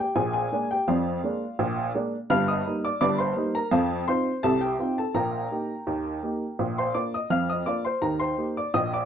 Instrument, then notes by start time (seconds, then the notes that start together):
upright piano
0.00 G4 G5
0.16 A#1 A#2 G#4 G#5
0.33 G#4 G#5
0.52 G#3 A#3 D4
0.71 G4 G5
0.88 F2 F3 F4 D5 F5
1.24 G#3 A#3 D4
1.59 A#1 A#2
1.95 G#3 A#3 D4
2.30 G1 G2 F5 F6
2.48 D#5 D#6
2.66 G3 A#3 D#4
2.85 D5 D6
3.01 G1 G2 D5 D6
3.18 C5 C6
3.36 G3 A#3 D#4
3.55 A#4 A#5
3.71 F2 F3 A4 F5 A5
4.08 C4 D#4 F4 C5 C6
4.43 C2 C3 A4 A5
4.61 G4 G5
4.79 C4 D#4 F4
4.98 A4 A5
5.15 A#1 A#2 A#4 G5 A#5
5.51 A#3 D#4 G4
5.87 D#2 D#3
6.23 A#3 D#4 G4
6.59 A#1 A#2
6.78 C5 C6
6.94 A#3 D4 F4 D5 D6
7.14 D#5 D#6
7.30 F2 F3 F5 F6
7.49 D#5 D#6
7.66 A#3 D4 F4 D5 D6
7.85 C5 C6
8.02 D#2 D#3 A#4 A#5
8.20 C5 C6
8.38 A#3 D#4 G4
8.57 D5 D6
8.74 A#1 A#2 D#5 D#6
8.94 D5 D6